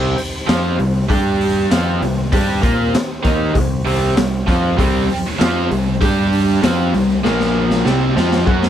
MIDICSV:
0, 0, Header, 1, 8, 480
1, 0, Start_track
1, 0, Key_signature, -3, "minor"
1, 0, Tempo, 614754
1, 1814, Time_signature, 4, 2, 24, 8
1, 6787, End_track
2, 0, Start_track
2, 0, Title_t, "Tonewheel organ"
2, 0, Program_c, 0, 16
2, 0, Note_on_c, 0, 60, 69
2, 0, Note_on_c, 0, 63, 73
2, 0, Note_on_c, 0, 67, 67
2, 0, Note_on_c, 0, 72, 68
2, 850, Note_off_c, 0, 60, 0
2, 852, Note_off_c, 0, 72, 0
2, 853, Note_off_c, 0, 63, 0
2, 853, Note_off_c, 0, 67, 0
2, 874, Note_on_c, 0, 67, 74
2, 875, Note_on_c, 0, 62, 70
2, 876, Note_on_c, 0, 55, 78
2, 876, Note_on_c, 0, 74, 73
2, 1326, Note_off_c, 0, 67, 0
2, 1336, Note_on_c, 0, 67, 71
2, 1336, Note_on_c, 0, 72, 73
2, 1340, Note_off_c, 0, 55, 0
2, 1340, Note_off_c, 0, 62, 0
2, 1340, Note_off_c, 0, 74, 0
2, 1340, Note_on_c, 0, 51, 68
2, 1341, Note_on_c, 0, 60, 75
2, 3235, Note_off_c, 0, 67, 0
2, 3235, Note_off_c, 0, 72, 0
2, 3237, Note_off_c, 0, 51, 0
2, 3237, Note_off_c, 0, 60, 0
2, 3267, Note_on_c, 0, 63, 68
2, 3269, Note_on_c, 0, 72, 70
2, 3270, Note_on_c, 0, 60, 68
2, 3272, Note_on_c, 0, 67, 63
2, 4685, Note_off_c, 0, 63, 0
2, 4686, Note_off_c, 0, 60, 0
2, 4686, Note_off_c, 0, 72, 0
2, 4687, Note_off_c, 0, 67, 0
2, 4693, Note_on_c, 0, 74, 79
2, 4696, Note_on_c, 0, 55, 77
2, 4696, Note_on_c, 0, 62, 80
2, 4697, Note_on_c, 0, 67, 77
2, 5168, Note_off_c, 0, 74, 0
2, 5169, Note_off_c, 0, 55, 0
2, 5169, Note_off_c, 0, 62, 0
2, 5169, Note_off_c, 0, 67, 0
2, 5176, Note_on_c, 0, 63, 67
2, 5178, Note_on_c, 0, 67, 68
2, 5181, Note_on_c, 0, 60, 75
2, 5182, Note_on_c, 0, 72, 71
2, 5649, Note_off_c, 0, 63, 0
2, 5650, Note_off_c, 0, 67, 0
2, 5652, Note_off_c, 0, 60, 0
2, 5653, Note_off_c, 0, 72, 0
2, 5660, Note_on_c, 0, 65, 73
2, 5663, Note_on_c, 0, 77, 73
2, 5665, Note_on_c, 0, 70, 70
2, 5668, Note_on_c, 0, 58, 69
2, 6121, Note_on_c, 0, 63, 71
2, 6122, Note_on_c, 0, 72, 67
2, 6122, Note_on_c, 0, 75, 72
2, 6128, Note_on_c, 0, 67, 68
2, 6131, Note_off_c, 0, 65, 0
2, 6133, Note_off_c, 0, 77, 0
2, 6134, Note_off_c, 0, 70, 0
2, 6135, Note_off_c, 0, 58, 0
2, 6593, Note_on_c, 0, 73, 67
2, 6596, Note_on_c, 0, 66, 70
2, 6602, Note_off_c, 0, 63, 0
2, 6602, Note_off_c, 0, 75, 0
2, 6602, Note_on_c, 0, 78, 78
2, 6603, Note_off_c, 0, 72, 0
2, 6605, Note_off_c, 0, 67, 0
2, 6605, Note_on_c, 0, 61, 77
2, 6787, Note_off_c, 0, 61, 0
2, 6787, Note_off_c, 0, 66, 0
2, 6787, Note_off_c, 0, 73, 0
2, 6787, Note_off_c, 0, 78, 0
2, 6787, End_track
3, 0, Start_track
3, 0, Title_t, "Overdriven electric guitar"
3, 0, Program_c, 1, 29
3, 0, Note_on_c, 1, 48, 85
3, 0, Note_on_c, 1, 55, 84
3, 0, Note_on_c, 1, 60, 96
3, 119, Note_off_c, 1, 48, 0
3, 121, Note_off_c, 1, 55, 0
3, 122, Note_off_c, 1, 60, 0
3, 366, Note_on_c, 1, 53, 90
3, 370, Note_on_c, 1, 60, 100
3, 373, Note_on_c, 1, 65, 109
3, 602, Note_off_c, 1, 53, 0
3, 605, Note_off_c, 1, 60, 0
3, 606, Note_off_c, 1, 65, 0
3, 608, Note_on_c, 1, 48, 55
3, 612, Note_on_c, 1, 55, 65
3, 803, Note_off_c, 1, 48, 0
3, 805, Note_off_c, 1, 55, 0
3, 852, Note_on_c, 1, 55, 87
3, 852, Note_on_c, 1, 62, 107
3, 857, Note_on_c, 1, 67, 105
3, 1326, Note_off_c, 1, 55, 0
3, 1326, Note_off_c, 1, 62, 0
3, 1328, Note_off_c, 1, 67, 0
3, 1331, Note_on_c, 1, 53, 89
3, 1332, Note_on_c, 1, 60, 100
3, 1336, Note_on_c, 1, 65, 97
3, 1565, Note_off_c, 1, 53, 0
3, 1566, Note_off_c, 1, 60, 0
3, 1568, Note_off_c, 1, 65, 0
3, 1576, Note_on_c, 1, 48, 64
3, 1582, Note_on_c, 1, 55, 67
3, 1767, Note_off_c, 1, 48, 0
3, 1770, Note_off_c, 1, 55, 0
3, 1813, Note_on_c, 1, 55, 86
3, 1814, Note_on_c, 1, 62, 85
3, 1818, Note_on_c, 1, 67, 95
3, 2042, Note_off_c, 1, 55, 0
3, 2045, Note_on_c, 1, 58, 84
3, 2047, Note_off_c, 1, 62, 0
3, 2047, Note_off_c, 1, 67, 0
3, 2050, Note_on_c, 1, 70, 97
3, 2051, Note_on_c, 1, 65, 98
3, 2282, Note_off_c, 1, 58, 0
3, 2285, Note_off_c, 1, 65, 0
3, 2285, Note_off_c, 1, 70, 0
3, 2522, Note_on_c, 1, 51, 73
3, 2523, Note_on_c, 1, 58, 88
3, 2529, Note_on_c, 1, 63, 97
3, 2760, Note_off_c, 1, 51, 0
3, 2761, Note_off_c, 1, 58, 0
3, 2764, Note_off_c, 1, 63, 0
3, 2766, Note_on_c, 1, 48, 75
3, 2768, Note_on_c, 1, 55, 76
3, 2961, Note_off_c, 1, 48, 0
3, 2962, Note_off_c, 1, 55, 0
3, 3008, Note_on_c, 1, 48, 94
3, 3009, Note_on_c, 1, 55, 91
3, 3013, Note_on_c, 1, 60, 107
3, 3241, Note_off_c, 1, 48, 0
3, 3244, Note_off_c, 1, 55, 0
3, 3245, Note_off_c, 1, 60, 0
3, 3250, Note_on_c, 1, 48, 62
3, 3255, Note_on_c, 1, 55, 67
3, 3443, Note_off_c, 1, 48, 0
3, 3446, Note_off_c, 1, 55, 0
3, 3489, Note_on_c, 1, 53, 94
3, 3494, Note_on_c, 1, 60, 91
3, 3498, Note_on_c, 1, 65, 95
3, 3724, Note_off_c, 1, 53, 0
3, 3726, Note_off_c, 1, 60, 0
3, 3728, Note_off_c, 1, 65, 0
3, 3729, Note_on_c, 1, 48, 79
3, 3730, Note_on_c, 1, 55, 88
3, 3734, Note_on_c, 1, 60, 97
3, 3963, Note_off_c, 1, 48, 0
3, 3964, Note_off_c, 1, 55, 0
3, 3966, Note_off_c, 1, 60, 0
3, 4207, Note_on_c, 1, 53, 90
3, 4208, Note_on_c, 1, 60, 93
3, 4209, Note_on_c, 1, 65, 109
3, 4442, Note_off_c, 1, 53, 0
3, 4443, Note_off_c, 1, 60, 0
3, 4444, Note_off_c, 1, 65, 0
3, 4451, Note_on_c, 1, 48, 58
3, 4454, Note_on_c, 1, 55, 66
3, 4644, Note_off_c, 1, 48, 0
3, 4645, Note_off_c, 1, 55, 0
3, 4695, Note_on_c, 1, 55, 97
3, 4698, Note_on_c, 1, 62, 91
3, 4702, Note_on_c, 1, 67, 106
3, 5166, Note_off_c, 1, 55, 0
3, 5168, Note_off_c, 1, 62, 0
3, 5170, Note_off_c, 1, 67, 0
3, 5173, Note_on_c, 1, 53, 77
3, 5176, Note_on_c, 1, 60, 80
3, 5176, Note_on_c, 1, 65, 90
3, 5405, Note_off_c, 1, 53, 0
3, 5407, Note_off_c, 1, 60, 0
3, 5407, Note_off_c, 1, 65, 0
3, 5413, Note_on_c, 1, 48, 56
3, 5417, Note_on_c, 1, 55, 76
3, 5605, Note_off_c, 1, 48, 0
3, 5607, Note_off_c, 1, 55, 0
3, 5652, Note_on_c, 1, 46, 77
3, 5653, Note_on_c, 1, 53, 86
3, 5656, Note_on_c, 1, 58, 90
3, 6125, Note_off_c, 1, 46, 0
3, 6125, Note_off_c, 1, 53, 0
3, 6127, Note_off_c, 1, 58, 0
3, 6128, Note_on_c, 1, 48, 100
3, 6129, Note_on_c, 1, 55, 98
3, 6134, Note_on_c, 1, 60, 109
3, 6363, Note_off_c, 1, 48, 0
3, 6363, Note_off_c, 1, 55, 0
3, 6366, Note_off_c, 1, 60, 0
3, 6373, Note_on_c, 1, 53, 80
3, 6375, Note_on_c, 1, 60, 86
3, 6380, Note_on_c, 1, 65, 88
3, 6605, Note_off_c, 1, 53, 0
3, 6607, Note_off_c, 1, 60, 0
3, 6609, Note_off_c, 1, 65, 0
3, 6611, Note_on_c, 1, 54, 97
3, 6614, Note_on_c, 1, 61, 116
3, 6616, Note_on_c, 1, 66, 100
3, 6787, Note_off_c, 1, 54, 0
3, 6787, Note_off_c, 1, 61, 0
3, 6787, Note_off_c, 1, 66, 0
3, 6787, End_track
4, 0, Start_track
4, 0, Title_t, "Picked electric bass"
4, 0, Program_c, 2, 34
4, 0, Note_on_c, 2, 36, 97
4, 121, Note_off_c, 2, 36, 0
4, 384, Note_on_c, 2, 41, 89
4, 602, Note_off_c, 2, 41, 0
4, 621, Note_on_c, 2, 36, 77
4, 841, Note_off_c, 2, 36, 0
4, 857, Note_on_c, 2, 43, 88
4, 1304, Note_off_c, 2, 43, 0
4, 1344, Note_on_c, 2, 41, 99
4, 1562, Note_off_c, 2, 41, 0
4, 1578, Note_on_c, 2, 36, 72
4, 1799, Note_off_c, 2, 36, 0
4, 1818, Note_on_c, 2, 43, 89
4, 2039, Note_off_c, 2, 43, 0
4, 2060, Note_on_c, 2, 46, 92
4, 2280, Note_off_c, 2, 46, 0
4, 2539, Note_on_c, 2, 39, 96
4, 2759, Note_off_c, 2, 39, 0
4, 2778, Note_on_c, 2, 36, 85
4, 2999, Note_off_c, 2, 36, 0
4, 3016, Note_on_c, 2, 36, 100
4, 3238, Note_off_c, 2, 36, 0
4, 3262, Note_on_c, 2, 36, 83
4, 3481, Note_off_c, 2, 36, 0
4, 3500, Note_on_c, 2, 41, 104
4, 3720, Note_off_c, 2, 41, 0
4, 3741, Note_on_c, 2, 36, 97
4, 3960, Note_off_c, 2, 36, 0
4, 4221, Note_on_c, 2, 41, 82
4, 4440, Note_off_c, 2, 41, 0
4, 4460, Note_on_c, 2, 36, 80
4, 4680, Note_off_c, 2, 36, 0
4, 4702, Note_on_c, 2, 43, 99
4, 5146, Note_off_c, 2, 43, 0
4, 5181, Note_on_c, 2, 41, 97
4, 5400, Note_off_c, 2, 41, 0
4, 5426, Note_on_c, 2, 36, 84
4, 5643, Note_off_c, 2, 36, 0
4, 5667, Note_on_c, 2, 34, 91
4, 6108, Note_off_c, 2, 34, 0
4, 6142, Note_on_c, 2, 36, 81
4, 6361, Note_off_c, 2, 36, 0
4, 6384, Note_on_c, 2, 41, 95
4, 6602, Note_off_c, 2, 41, 0
4, 6620, Note_on_c, 2, 42, 91
4, 6787, Note_off_c, 2, 42, 0
4, 6787, End_track
5, 0, Start_track
5, 0, Title_t, "Muted distorted electric guitar strokes"
5, 3975, Note_on_c, 9, 29, 61
5, 4053, Note_off_c, 9, 29, 0
5, 6787, End_track
6, 0, Start_track
6, 0, Title_t, "Muted overdriven electric guitar strokes"
6, 133, Note_on_c, 9, 29, 54
6, 211, Note_off_c, 9, 29, 0
6, 2293, Note_on_c, 9, 29, 64
6, 2371, Note_off_c, 9, 29, 0
6, 3975, Note_on_c, 9, 29, 55
6, 4053, Note_off_c, 9, 29, 0
6, 6787, End_track
7, 0, Start_track
7, 0, Title_t, "Muted picked electric bass strokes"
7, 2302, Note_on_c, 9, 29, 36
7, 2380, Note_off_c, 9, 29, 0
7, 6787, End_track
8, 0, Start_track
8, 0, Title_t, "Drums"
8, 140, Note_on_c, 9, 46, 63
8, 218, Note_off_c, 9, 46, 0
8, 379, Note_on_c, 9, 56, 65
8, 380, Note_on_c, 9, 46, 73
8, 383, Note_on_c, 9, 38, 115
8, 457, Note_off_c, 9, 56, 0
8, 458, Note_off_c, 9, 46, 0
8, 462, Note_off_c, 9, 38, 0
8, 621, Note_on_c, 9, 46, 59
8, 699, Note_off_c, 9, 46, 0
8, 857, Note_on_c, 9, 36, 98
8, 861, Note_on_c, 9, 56, 100
8, 862, Note_on_c, 9, 46, 79
8, 935, Note_off_c, 9, 36, 0
8, 940, Note_off_c, 9, 46, 0
8, 940, Note_off_c, 9, 56, 0
8, 1100, Note_on_c, 9, 46, 57
8, 1178, Note_off_c, 9, 46, 0
8, 1336, Note_on_c, 9, 46, 95
8, 1340, Note_on_c, 9, 38, 120
8, 1343, Note_on_c, 9, 56, 74
8, 1414, Note_off_c, 9, 46, 0
8, 1418, Note_off_c, 9, 38, 0
8, 1422, Note_off_c, 9, 56, 0
8, 1579, Note_on_c, 9, 46, 59
8, 1583, Note_on_c, 9, 38, 31
8, 1658, Note_off_c, 9, 46, 0
8, 1661, Note_off_c, 9, 38, 0
8, 1816, Note_on_c, 9, 36, 105
8, 1817, Note_on_c, 9, 46, 85
8, 1821, Note_on_c, 9, 56, 81
8, 1894, Note_off_c, 9, 36, 0
8, 1895, Note_off_c, 9, 46, 0
8, 1900, Note_off_c, 9, 56, 0
8, 2056, Note_on_c, 9, 36, 103
8, 2057, Note_on_c, 9, 46, 61
8, 2134, Note_off_c, 9, 36, 0
8, 2135, Note_off_c, 9, 46, 0
8, 2299, Note_on_c, 9, 46, 81
8, 2301, Note_on_c, 9, 56, 67
8, 2302, Note_on_c, 9, 38, 116
8, 2377, Note_off_c, 9, 46, 0
8, 2379, Note_off_c, 9, 56, 0
8, 2380, Note_off_c, 9, 38, 0
8, 2534, Note_on_c, 9, 46, 65
8, 2535, Note_on_c, 9, 36, 111
8, 2612, Note_off_c, 9, 46, 0
8, 2613, Note_off_c, 9, 36, 0
8, 2772, Note_on_c, 9, 46, 79
8, 2774, Note_on_c, 9, 56, 96
8, 2775, Note_on_c, 9, 36, 93
8, 2850, Note_off_c, 9, 46, 0
8, 2852, Note_off_c, 9, 56, 0
8, 2853, Note_off_c, 9, 36, 0
8, 3020, Note_on_c, 9, 46, 58
8, 3098, Note_off_c, 9, 46, 0
8, 3252, Note_on_c, 9, 56, 71
8, 3256, Note_on_c, 9, 46, 81
8, 3259, Note_on_c, 9, 38, 115
8, 3330, Note_off_c, 9, 56, 0
8, 3334, Note_off_c, 9, 46, 0
8, 3337, Note_off_c, 9, 38, 0
8, 3496, Note_on_c, 9, 36, 98
8, 3502, Note_on_c, 9, 46, 54
8, 3505, Note_on_c, 9, 38, 29
8, 3575, Note_off_c, 9, 36, 0
8, 3580, Note_off_c, 9, 46, 0
8, 3583, Note_off_c, 9, 38, 0
8, 3737, Note_on_c, 9, 36, 105
8, 3738, Note_on_c, 9, 56, 94
8, 3741, Note_on_c, 9, 46, 79
8, 3815, Note_off_c, 9, 36, 0
8, 3816, Note_off_c, 9, 56, 0
8, 3819, Note_off_c, 9, 46, 0
8, 3981, Note_on_c, 9, 46, 55
8, 4059, Note_off_c, 9, 46, 0
8, 4217, Note_on_c, 9, 56, 79
8, 4222, Note_on_c, 9, 46, 77
8, 4225, Note_on_c, 9, 38, 123
8, 4295, Note_off_c, 9, 56, 0
8, 4300, Note_off_c, 9, 46, 0
8, 4303, Note_off_c, 9, 38, 0
8, 4461, Note_on_c, 9, 46, 62
8, 4539, Note_off_c, 9, 46, 0
8, 4692, Note_on_c, 9, 56, 98
8, 4697, Note_on_c, 9, 36, 103
8, 4697, Note_on_c, 9, 46, 83
8, 4771, Note_off_c, 9, 56, 0
8, 4775, Note_off_c, 9, 36, 0
8, 4776, Note_off_c, 9, 46, 0
8, 4939, Note_on_c, 9, 46, 57
8, 5017, Note_off_c, 9, 46, 0
8, 5170, Note_on_c, 9, 56, 83
8, 5179, Note_on_c, 9, 46, 89
8, 5182, Note_on_c, 9, 38, 117
8, 5248, Note_off_c, 9, 56, 0
8, 5257, Note_off_c, 9, 46, 0
8, 5260, Note_off_c, 9, 38, 0
8, 5420, Note_on_c, 9, 46, 56
8, 5423, Note_on_c, 9, 38, 32
8, 5498, Note_off_c, 9, 46, 0
8, 5501, Note_off_c, 9, 38, 0
8, 5654, Note_on_c, 9, 56, 90
8, 5659, Note_on_c, 9, 38, 66
8, 5732, Note_off_c, 9, 56, 0
8, 5737, Note_off_c, 9, 38, 0
8, 5779, Note_on_c, 9, 38, 52
8, 5857, Note_off_c, 9, 38, 0
8, 6016, Note_on_c, 9, 38, 67
8, 6094, Note_off_c, 9, 38, 0
8, 6136, Note_on_c, 9, 56, 74
8, 6138, Note_on_c, 9, 38, 79
8, 6214, Note_off_c, 9, 56, 0
8, 6216, Note_off_c, 9, 38, 0
8, 6379, Note_on_c, 9, 38, 77
8, 6457, Note_off_c, 9, 38, 0
8, 6497, Note_on_c, 9, 38, 69
8, 6575, Note_off_c, 9, 38, 0
8, 6609, Note_on_c, 9, 56, 99
8, 6616, Note_on_c, 9, 36, 99
8, 6687, Note_off_c, 9, 56, 0
8, 6694, Note_off_c, 9, 36, 0
8, 6735, Note_on_c, 9, 38, 73
8, 6787, Note_off_c, 9, 38, 0
8, 6787, End_track
0, 0, End_of_file